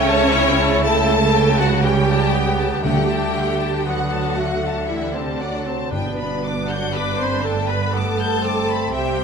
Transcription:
Already playing: C#2 C#3 A3 C#4 C#5
0.08 A5
0.32 E4 G5
0.60 A5
0.84 A3 A4 G5 A5
1.11 A5
1.34 G5
1.59 F#3 F#4 F#5 A5
1.83 G3 C#4 G4 G5
2.08 A5
2.32 B3 G5
2.59 A5
2.83 D2 D3 G3 A3 G4 F#5 G5
3.10 A5
3.35 F#5
3.59 A5
3.84 F#3 B3 F#4 F#5
4.11 A5
4.37 A3 F#5
4.65 A5
4.87 E3 G3 E4 E5 F#5
5.11 C3 C5 A5
5.16 C4
5.38 D3 F#3 D4 D5 F#5
5.65 C3 C4 C5 A5
5.90 G1 G2 B2 B3 D4 B4 G5
6.19 B5
6.43 D6
6.68 F#3 F#4 F#5 G6
6.94 B3 B4 B5 D6
7.19 C4 C5 B5 C6
7.43 A3 A4 G5 A5
7.68 B3 B4 B5
7.93 A3 B3 A4 A5 D6
8.19 G6
8.42 C4 D6
8.69 B5
8.92 C2 C3 G3 G4 E5 G5
9.15 G5

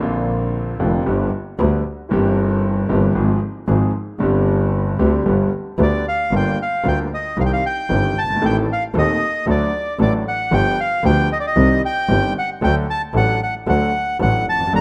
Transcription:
0.00 A#1 A#2 D3 A#3 C4 F4
0.79 F1 F2 D3 A#3 C4 F4
1.06 G1 G2 D3 G3 B3 G4
1.58 D2 D3 G3 B3 G4
2.09 G1 G2 E3 A#3 C4 G4
2.89 G1 G2 E3 A#3 C4 G4
3.15 G#1 G#2 F3 G#3 C4 G#4
3.67 G#1 G#2 F3 G#3 C4 G#4
4.19 G1 G2 D3 G3 C4 G4
4.99 D2 D3 G3 C4 G4
5.25 G1 G2 D3 G3 B3 G4
5.78 D2 D3 G3 B3 G4
5.82 D5
6.08 F5
6.31 G1 G2 D3 G3 A#3 F4
6.36 G5
6.62 F5
6.84 D2 D3 G3 A#3 F4
6.88 G5
7.14 D#5
7.37 C2 C3 D#3 G3 C4 G4 F5
7.46 G5
7.53 F5
7.66 G5
7.90 G1 G2 D#3 G3 C4 G4
8.17 G1 A5
8.23 F#1
8.30 G1
8.36 G#1
8.42 A1 A2 D#3 A3 C4 A4
8.46 G5
8.73 F5
8.94 D#1 D#2 D#3 A3 C4 A4
8.98 D#5
9.46 D2 D3 F#3 A3 D4 A4 D5
9.99 A1 A2 F#3 A3 D4 A4 D5
10.28 F#5
10.51 G1 G2 F3 B3 D4 G4 G5
10.81 F5
11.03 D2 D3 F3 B3 D4 G4 G5
11.32 D#5
11.40 D5
11.47 D#5
11.56 C2 C3 D#3 G3 C4 G4
11.86 G5
12.08 G1 G2 D#3 G3 C4 G4
12.39 F#5
12.62 D2 D3 F#3 A3 D4 A4 G5
12.90 A5
13.13 A1 A2 F#3 A3 D4 A4 F#5
13.43 F#5
13.67 D2 D3 F#3 A3 D4 A4 F#5
14.19 A1 A2 F#3 A3 D4 A4 F#5
14.46 F1 A5
14.54 E2
14.60 F2
14.67 F#2
14.72 G1 G2 G3 A#3 D4 A4
14.76 A#5

